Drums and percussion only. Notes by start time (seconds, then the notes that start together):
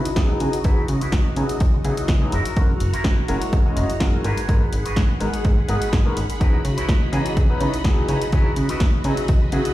0.05 closed hi-hat
0.16 kick, snare, closed hi-hat
0.40 open hi-hat
0.53 closed hi-hat
0.64 kick, closed hi-hat
0.88 open hi-hat
1.01 closed hi-hat
1.12 kick, snare, closed hi-hat
1.36 open hi-hat
1.49 closed hi-hat
1.60 kick, closed hi-hat
1.85 open hi-hat
1.97 closed hi-hat
2.08 kick, snare, closed hi-hat
2.32 open hi-hat
2.45 closed hi-hat
2.56 kick, closed hi-hat
2.80 open hi-hat
2.94 closed hi-hat
3.04 kick, snare, closed hi-hat
3.28 open hi-hat
3.42 closed hi-hat
3.53 kick, closed hi-hat
3.77 open hi-hat
3.90 closed hi-hat
4.00 kick, snare, closed hi-hat
4.24 open hi-hat
4.37 closed hi-hat
4.49 kick, closed hi-hat
4.73 open hi-hat
4.86 closed hi-hat
4.96 kick, snare, closed hi-hat
5.21 open hi-hat
5.34 closed hi-hat
5.45 kick, closed hi-hat
5.69 open hi-hat
5.82 closed hi-hat
5.93 kick, snare, closed hi-hat
6.17 open hi-hat
6.30 closed hi-hat
6.41 kick, closed hi-hat
6.65 open hi-hat
6.78 closed hi-hat
6.89 kick, snare, closed hi-hat
7.13 open hi-hat
7.26 closed hi-hat
7.37 kick, closed hi-hat
7.61 open hi-hat
7.74 closed hi-hat
7.84 kick, snare, closed hi-hat
8.09 open hi-hat
8.22 closed hi-hat
8.32 kick, closed hi-hat
8.56 open hi-hat
8.69 closed hi-hat
8.80 kick, snare, closed hi-hat
9.04 open hi-hat
9.17 closed hi-hat
9.28 kick, closed hi-hat
9.52 open hi-hat
9.65 closed hi-hat